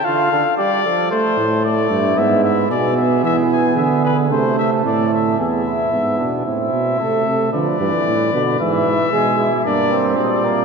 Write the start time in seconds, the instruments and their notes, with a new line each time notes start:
0.05 trombone D3, flugelhorn F4, trumpet F5
0.32 trombone D3, flugelhorn A4
0.57 trombone G3, flugelhorn G4, trumpet D5
0.84 trombone F3, flugelhorn A4
1.11 trombone A3, flugelhorn A4, trumpet C5
1.37 bass trombone A2
1.64 trombone A3, flugelhorn E4, trumpet D5
1.90 bass trombone G2
2.17 bass trombone G#2, trombone B3, trumpet E5
2.44 trumpet E5
2.70 bass trombone B2, trombone B3, flugelhorn G#4, trumpet D5
2.97 trumpet E5
3.23 bass trombone E3, trumpet E5
3.52 trumpet G#5
3.77 bass trombone D3, flugelhorn G#4, trumpet E5
4.05 trumpet B4
4.31 bass trombone C3, trombone A3, flugelhorn A4, trumpet C5
4.59 trumpet E5
4.84 bass trombone A2, trombone A3, trumpet D5
5.13 trumpet E5
5.38 bass trombone E2, trombone B3, flugelhorn G#4, trumpet E5
5.65 flugelhorn E4
5.92 bass trombone G#2, trombone B3
6.19 bass trombone B2, flugelhorn D4
6.45 bass trombone A2, trombone C4, flugelhorn E4, trumpet E5
6.73 bass trombone B2
6.99 bass trombone C3, trombone A3, flugelhorn A4
7.27 bass trombone C3
7.53 bass trombone D3, trombone F3, flugelhorn B4, trumpet D5
7.80 bass trombone G2, trombone E3
8.07 bass trombone A2
8.33 bass trombone B2, trombone D3
8.60 bass trombone G#2, trombone E3, trumpet E5
8.87 bass trombone G#2
9.12 bass trombone B2, trombone G#3, flugelhorn G#4
9.39 flugelhorn E4
9.65 bass trombone G2, trombone A#3, flugelhorn D4, trumpet D5
9.91 flugelhorn C4
10.17 bass trombone A#2, trombone G3, trumpet D5
10.24 trumpet D#5
10.30 trumpet D5
10.44 flugelhorn A#3